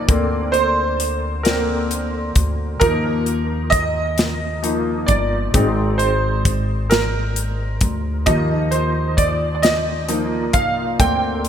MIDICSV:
0, 0, Header, 1, 4, 480
1, 0, Start_track
1, 0, Key_signature, -3, "major"
1, 0, Tempo, 909091
1, 46, Time_signature, 6, 3, 24, 8
1, 6065, End_track
2, 0, Start_track
2, 0, Title_t, "Grand piano"
2, 0, Program_c, 0, 0
2, 0, Control_c, 0, 64, 127
2, 0, Note_on_c, 0, 53, 44
2, 0, Note_on_c, 0, 58, 40
2, 0, Note_on_c, 0, 63, 49
2, 0, Note_on_c, 0, 74, 85
2, 0, Note_on_c, 0, 75, 113
2, 41, Note_on_c, 0, 50, 49
2, 45, Note_off_c, 0, 58, 0
2, 45, Note_on_c, 0, 58, 48
2, 50, Note_on_c, 0, 60, 54
2, 53, Control_c, 0, 64, 0
2, 56, Note_off_c, 0, 53, 0
2, 58, Note_off_c, 0, 63, 0
2, 58, Note_off_c, 0, 75, 0
2, 140, Control_c, 0, 64, 127
2, 274, Note_on_c, 0, 72, 91
2, 297, Note_off_c, 0, 74, 0
2, 740, Note_off_c, 0, 72, 0
2, 757, Note_on_c, 0, 70, 74
2, 760, Note_off_c, 0, 50, 0
2, 762, Note_off_c, 0, 58, 0
2, 763, Note_off_c, 0, 60, 0
2, 768, Note_on_c, 0, 50, 45
2, 770, Note_on_c, 0, 58, 41
2, 771, Note_on_c, 0, 60, 49
2, 986, Note_off_c, 0, 50, 0
2, 987, Note_off_c, 0, 58, 0
2, 988, Note_off_c, 0, 60, 0
2, 1281, Note_off_c, 0, 70, 0
2, 1476, Note_on_c, 0, 70, 91
2, 1484, Note_on_c, 0, 53, 52
2, 1489, Note_on_c, 0, 58, 49
2, 1493, Note_on_c, 0, 63, 59
2, 1495, Control_c, 0, 64, 0
2, 1595, Control_c, 0, 64, 127
2, 1805, Note_off_c, 0, 53, 0
2, 1807, Note_off_c, 0, 58, 0
2, 1809, Note_off_c, 0, 63, 0
2, 1954, Note_on_c, 0, 75, 106
2, 1976, Note_off_c, 0, 70, 0
2, 2419, Note_off_c, 0, 75, 0
2, 2442, Note_on_c, 0, 53, 49
2, 2444, Note_on_c, 0, 58, 41
2, 2446, Note_on_c, 0, 63, 54
2, 2663, Note_off_c, 0, 53, 0
2, 2665, Note_off_c, 0, 58, 0
2, 2666, Note_off_c, 0, 63, 0
2, 2674, Note_on_c, 0, 74, 77
2, 2922, Note_on_c, 0, 56, 51
2, 2926, Note_on_c, 0, 60, 50
2, 2928, Note_on_c, 0, 63, 58
2, 2933, Control_c, 0, 64, 0
2, 3030, Control_c, 0, 64, 127
2, 3139, Note_off_c, 0, 74, 0
2, 3157, Note_on_c, 0, 72, 78
2, 3244, Note_off_c, 0, 56, 0
2, 3246, Note_off_c, 0, 60, 0
2, 3247, Note_off_c, 0, 63, 0
2, 3641, Note_on_c, 0, 70, 79
2, 3656, Note_off_c, 0, 72, 0
2, 4163, Note_off_c, 0, 70, 0
2, 4362, Note_on_c, 0, 75, 90
2, 4363, Note_on_c, 0, 53, 53
2, 4366, Note_on_c, 0, 58, 48
2, 4369, Note_on_c, 0, 63, 60
2, 4374, Control_c, 0, 64, 0
2, 4478, Control_c, 0, 64, 127
2, 4587, Note_off_c, 0, 75, 0
2, 4600, Note_on_c, 0, 72, 73
2, 4684, Note_off_c, 0, 53, 0
2, 4686, Note_off_c, 0, 58, 0
2, 4687, Note_off_c, 0, 63, 0
2, 4826, Note_off_c, 0, 72, 0
2, 4842, Note_on_c, 0, 74, 79
2, 5033, Note_off_c, 0, 74, 0
2, 5041, Note_on_c, 0, 74, 66
2, 5082, Note_off_c, 0, 74, 0
2, 5082, Note_on_c, 0, 75, 83
2, 5323, Note_on_c, 0, 53, 47
2, 5326, Note_on_c, 0, 58, 40
2, 5326, Note_on_c, 0, 63, 54
2, 5543, Note_off_c, 0, 53, 0
2, 5543, Note_off_c, 0, 75, 0
2, 5545, Note_off_c, 0, 58, 0
2, 5545, Note_off_c, 0, 63, 0
2, 5562, Note_on_c, 0, 77, 82
2, 5804, Note_on_c, 0, 50, 53
2, 5806, Note_on_c, 0, 79, 95
2, 5808, Note_on_c, 0, 58, 48
2, 5811, Note_off_c, 0, 77, 0
2, 5811, Note_on_c, 0, 60, 55
2, 5813, Control_c, 0, 64, 0
2, 5911, Control_c, 0, 64, 127
2, 6065, Note_off_c, 0, 50, 0
2, 6065, Note_off_c, 0, 58, 0
2, 6065, Note_off_c, 0, 60, 0
2, 6065, Note_off_c, 0, 79, 0
2, 6065, End_track
3, 0, Start_track
3, 0, Title_t, "Upright bass"
3, 0, Program_c, 1, 32
3, 45, Note_on_c, 1, 38, 88
3, 1225, Note_off_c, 1, 38, 0
3, 1244, Note_on_c, 1, 38, 79
3, 1471, Note_off_c, 1, 38, 0
3, 1485, Note_on_c, 1, 39, 92
3, 2665, Note_off_c, 1, 39, 0
3, 2684, Note_on_c, 1, 31, 80
3, 2911, Note_off_c, 1, 31, 0
3, 2926, Note_on_c, 1, 32, 84
3, 4105, Note_off_c, 1, 32, 0
3, 4125, Note_on_c, 1, 38, 78
3, 4351, Note_off_c, 1, 38, 0
3, 4365, Note_on_c, 1, 39, 105
3, 5564, Note_off_c, 1, 39, 0
3, 5564, Note_on_c, 1, 36, 75
3, 5791, Note_off_c, 1, 36, 0
3, 5806, Note_on_c, 1, 38, 91
3, 6065, Note_off_c, 1, 38, 0
3, 6065, End_track
4, 0, Start_track
4, 0, Title_t, "Drums"
4, 45, Note_on_c, 9, 42, 83
4, 46, Note_on_c, 9, 36, 111
4, 98, Note_off_c, 9, 36, 0
4, 98, Note_off_c, 9, 42, 0
4, 283, Note_on_c, 9, 42, 45
4, 336, Note_off_c, 9, 42, 0
4, 527, Note_on_c, 9, 42, 64
4, 580, Note_off_c, 9, 42, 0
4, 766, Note_on_c, 9, 42, 69
4, 774, Note_on_c, 9, 38, 89
4, 819, Note_off_c, 9, 42, 0
4, 826, Note_off_c, 9, 38, 0
4, 1008, Note_on_c, 9, 42, 55
4, 1061, Note_off_c, 9, 42, 0
4, 1244, Note_on_c, 9, 42, 69
4, 1245, Note_on_c, 9, 36, 76
4, 1296, Note_off_c, 9, 42, 0
4, 1298, Note_off_c, 9, 36, 0
4, 1484, Note_on_c, 9, 42, 82
4, 1486, Note_on_c, 9, 36, 108
4, 1537, Note_off_c, 9, 42, 0
4, 1539, Note_off_c, 9, 36, 0
4, 1723, Note_on_c, 9, 42, 44
4, 1776, Note_off_c, 9, 42, 0
4, 1965, Note_on_c, 9, 42, 66
4, 1966, Note_on_c, 9, 36, 81
4, 2018, Note_off_c, 9, 42, 0
4, 2019, Note_off_c, 9, 36, 0
4, 2205, Note_on_c, 9, 42, 69
4, 2213, Note_on_c, 9, 38, 97
4, 2258, Note_off_c, 9, 42, 0
4, 2266, Note_off_c, 9, 38, 0
4, 2448, Note_on_c, 9, 42, 58
4, 2501, Note_off_c, 9, 42, 0
4, 2682, Note_on_c, 9, 42, 66
4, 2685, Note_on_c, 9, 36, 74
4, 2735, Note_off_c, 9, 42, 0
4, 2738, Note_off_c, 9, 36, 0
4, 2925, Note_on_c, 9, 42, 85
4, 2926, Note_on_c, 9, 36, 107
4, 2978, Note_off_c, 9, 42, 0
4, 2979, Note_off_c, 9, 36, 0
4, 3164, Note_on_c, 9, 42, 43
4, 3217, Note_off_c, 9, 42, 0
4, 3407, Note_on_c, 9, 36, 82
4, 3407, Note_on_c, 9, 42, 64
4, 3460, Note_off_c, 9, 36, 0
4, 3460, Note_off_c, 9, 42, 0
4, 3647, Note_on_c, 9, 42, 69
4, 3655, Note_on_c, 9, 38, 89
4, 3700, Note_off_c, 9, 42, 0
4, 3708, Note_off_c, 9, 38, 0
4, 3887, Note_on_c, 9, 42, 57
4, 3940, Note_off_c, 9, 42, 0
4, 4122, Note_on_c, 9, 42, 65
4, 4125, Note_on_c, 9, 36, 79
4, 4175, Note_off_c, 9, 42, 0
4, 4178, Note_off_c, 9, 36, 0
4, 4363, Note_on_c, 9, 42, 88
4, 4366, Note_on_c, 9, 36, 104
4, 4416, Note_off_c, 9, 42, 0
4, 4418, Note_off_c, 9, 36, 0
4, 4602, Note_on_c, 9, 42, 42
4, 4655, Note_off_c, 9, 42, 0
4, 4846, Note_on_c, 9, 36, 74
4, 4847, Note_on_c, 9, 42, 65
4, 4899, Note_off_c, 9, 36, 0
4, 4900, Note_off_c, 9, 42, 0
4, 5085, Note_on_c, 9, 42, 73
4, 5093, Note_on_c, 9, 38, 93
4, 5138, Note_off_c, 9, 42, 0
4, 5146, Note_off_c, 9, 38, 0
4, 5325, Note_on_c, 9, 42, 57
4, 5378, Note_off_c, 9, 42, 0
4, 5562, Note_on_c, 9, 42, 65
4, 5565, Note_on_c, 9, 36, 81
4, 5615, Note_off_c, 9, 42, 0
4, 5617, Note_off_c, 9, 36, 0
4, 5806, Note_on_c, 9, 36, 103
4, 5807, Note_on_c, 9, 42, 85
4, 5859, Note_off_c, 9, 36, 0
4, 5860, Note_off_c, 9, 42, 0
4, 6044, Note_on_c, 9, 42, 46
4, 6065, Note_off_c, 9, 42, 0
4, 6065, End_track
0, 0, End_of_file